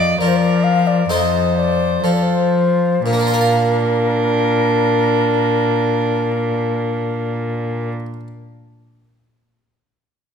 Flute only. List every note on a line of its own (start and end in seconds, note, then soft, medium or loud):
0.00 0.19 D#5 medium
0.19 0.30 D5 medium
0.28 0.38 C5 medium
0.36 0.65 D5 medium
0.64 0.89 F5 medium
0.87 1.11 D5 medium
1.10 1.56 D#5 medium
1.57 2.06 D5 medium
2.04 2.15 C5 medium
2.13 2.24 D5 medium
2.23 3.04 C5 medium
3.05 7.89 A#4 medium